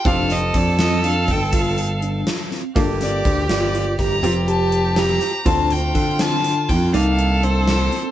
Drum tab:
HH |xxxxxxxxxxx|xxxxxxxxxxx|xxxxxxxxxxx|
SD |-o-o-----oo|-o-o-----o-|---o-----o-|
BD |o-o--oo----|o-o--o-----|o-o--o-----|